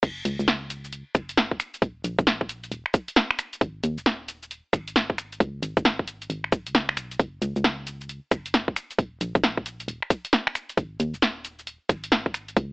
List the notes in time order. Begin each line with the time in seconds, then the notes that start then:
0.03 F#1, kick, closed hi-hat, crash, cabasa
0.25 C#2, closed hi-hat, cabasa
0.39 C#2, cabasa
0.48 snare, closed hi-hat, cabasa
0.70 closed hi-hat, cabasa
0.84 cabasa
0.93 closed hi-hat, cabasa
1.15 F#1, finger snap, kick, closed hi-hat, cabasa
1.29 closed hi-hat, cabasa
1.37 snare, closed hi-hat, cabasa
1.51 kick
1.60 finger snap, closed hi-hat, cabasa
1.74 closed hi-hat, cabasa
1.82 D#1, kick, closed hi-hat, cabasa
2.04 A#1, closed hi-hat, cabasa
2.19 A#1, kick, cabasa
2.27 snare, closed hi-hat, cabasa
2.41 kick
2.49 closed hi-hat, cabasa
2.64 closed hi-hat, cabasa
2.72 D#1, closed hi-hat, cabasa
2.86 finger snap
2.94 kick, closed hi-hat, cabasa
3.08 closed hi-hat, cabasa
3.16 snare, closed hi-hat, cabasa
3.31 finger snap
3.39 finger snap, closed hi-hat, cabasa
3.53 closed hi-hat, cabasa
3.61 G#1, kick, closed hi-hat, cabasa
3.84 D#2, closed hi-hat, cabasa
3.98 D#1, cabasa
4.06 snare, closed hi-hat, cabasa
4.28 closed hi-hat, cabasa
4.43 cabasa
4.51 closed hi-hat, cabasa
4.73 G#1, finger snap, kick, closed hi-hat, cabasa
4.88 closed hi-hat, cabasa
4.96 snare, closed hi-hat, cabasa
5.10 kick
5.18 finger snap, closed hi-hat, cabasa
5.32 closed hi-hat, cabasa
5.40 C#2, kick, closed hi-hat, cabasa
5.63 G#1, closed hi-hat, cabasa
5.77 G#1, kick, cabasa
5.85 snare, closed hi-hat, cabasa
5.99 kick
6.08 closed hi-hat, cabasa
6.22 closed hi-hat, cabasa
6.30 G#1, closed hi-hat, cabasa
6.44 finger snap
6.52 kick, closed hi-hat, cabasa
6.67 C#2, closed hi-hat, cabasa
6.75 snare, closed hi-hat, cabasa
6.89 finger snap
6.97 B1, finger snap, closed hi-hat, cabasa
7.11 closed hi-hat, cabasa
7.20 F#1, kick, closed hi-hat, cabasa
7.42 C#2, closed hi-hat, cabasa
7.56 C#2, cabasa
7.64 snare, closed hi-hat, cabasa
7.87 closed hi-hat, cabasa
8.01 cabasa
8.09 closed hi-hat, cabasa
8.31 F#1, finger snap, kick, closed hi-hat, cabasa
8.46 closed hi-hat, cabasa
8.54 snare, closed hi-hat, cabasa
8.68 kick
8.76 finger snap, closed hi-hat, cabasa
8.91 closed hi-hat, cabasa
8.98 D#1, kick, closed hi-hat, cabasa
9.21 A#1, closed hi-hat, cabasa
9.35 A#1, kick, cabasa
9.44 snare, closed hi-hat, cabasa
9.57 kick
9.66 closed hi-hat, cabasa
9.80 closed hi-hat, cabasa
9.88 D#1, closed hi-hat, cabasa
10.02 finger snap
10.10 kick, closed hi-hat, cabasa
10.25 closed hi-hat, cabasa
10.33 snare, closed hi-hat, cabasa
10.47 finger snap
10.55 finger snap, closed hi-hat, cabasa
10.69 closed hi-hat, cabasa
10.77 G#1, kick, closed hi-hat, cabasa
11.00 D#2, closed hi-hat, cabasa
11.14 D#1, cabasa
11.22 snare, closed hi-hat, cabasa
11.45 closed hi-hat, cabasa
11.59 cabasa
11.67 closed hi-hat, cabasa
11.89 G#1, finger snap, kick, closed hi-hat, cabasa
12.04 closed hi-hat, cabasa
12.12 snare, closed hi-hat, cabasa
12.26 kick
12.34 finger snap, closed hi-hat, cabasa
12.48 closed hi-hat, cabasa
12.57 C#2, kick, closed hi-hat, cabasa